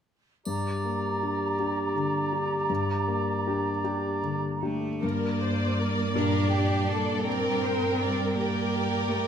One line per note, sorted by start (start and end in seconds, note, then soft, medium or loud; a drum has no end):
0.45 2.66 G2 soft
0.45 4.66 G4 soft
0.45 4.67 D5 soft
0.45 4.66 A#5 soft
0.45 triangle soft
0.85 1.44 A#3 soft
1.22 1.55 D4 soft
1.22 1.55 G4 soft
1.59 1.92 D4 soft
1.59 1.92 G4 soft
1.96 2.54 D3 soft
2.32 2.66 D4 soft
2.32 2.66 G4 soft
2.70 5.00 G2 soft
3.08 3.68 A#3 soft
3.47 3.81 D4 soft
3.47 3.81 G4 soft
3.84 4.20 D4 soft
3.84 4.20 G4 soft
4.24 4.88 D3 soft
4.62 5.05 A3 medium
4.62 4.99 D4 soft
4.62 4.99 G4 soft
5.03 9.28 G2 soft
5.03 6.12 G2 soft
5.03 6.17 A#3 medium
5.03 5.38 A#4 soft
5.03 7.22 D5 soft
5.03 6.12 D5 soft
5.40 5.78 C5 soft
5.78 6.14 A#4 soft
6.15 9.28 A#2 soft
6.15 9.28 D4 soft
6.15 7.26 D4 medium
6.15 9.28 G4 soft
6.15 6.51 A#4 soft
6.15 6.50 A#4 soft
6.15 7.25 D5 soft
6.51 6.88 G4 soft
6.51 6.89 G4 soft
6.88 7.26 A#3 soft
6.88 7.26 A4 soft
7.24 8.37 C4 medium
7.24 8.35 A#4 soft
7.24 8.36 A#4 soft
7.24 7.62 D5 soft
7.24 8.35 G5 soft
7.63 8.00 C5 soft
8.00 8.36 D5 soft
8.35 9.10 A#3 medium
8.35 9.28 G4 soft
8.35 9.28 A#4 soft
8.35 9.28 D5 soft
8.35 9.28 G5 soft
9.08 9.28 A3 soft